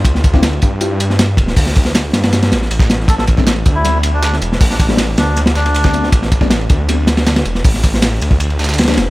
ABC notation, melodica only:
X:1
M:4/4
L:1/16
Q:1/4=158
K:Am
V:1 name="Melodica"
z16 | z16 | A A z4 z E2 z2 D2 z3 | z D D z3 D2 z2 D6 |
z16 | z16 |]